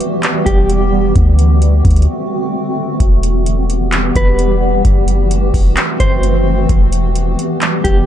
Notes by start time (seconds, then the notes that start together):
Already playing: E3 G3 B3 G4
0.01 closed hi-hat
0.23 clap, closed hi-hat
0.46 E1 G4, kick, closed hi-hat
0.70 closed hi-hat
1.16 D2 D3 A3 C4 F#4, kick, closed hi-hat
1.39 closed hi-hat
1.62 closed hi-hat
1.85 D2, kick, closed hi-hat
1.91 closed hi-hat
1.96 closed hi-hat
2.02 closed hi-hat
3.00 E1 E3 G3 B3 G4, kick, closed hi-hat
3.23 closed hi-hat
3.46 closed hi-hat
3.70 closed hi-hat
3.92 clap, closed hi-hat
4.15 E1 B4, kick, closed hi-hat
4.39 closed hi-hat
4.85 F#1 A3 C4 F#4, kick, closed hi-hat
5.08 closed hi-hat
5.31 closed hi-hat
5.54 E1, kick, open hi-hat
5.77 clap, closed hi-hat
6.00 F#1 C5, kick, closed hi-hat
6.23 closed hi-hat
6.69 E1 G3 B3 G4, kick, closed hi-hat
6.92 closed hi-hat
7.16 closed hi-hat
7.39 closed hi-hat
7.62 clap, closed hi-hat
7.84 E1 G4, kick, closed hi-hat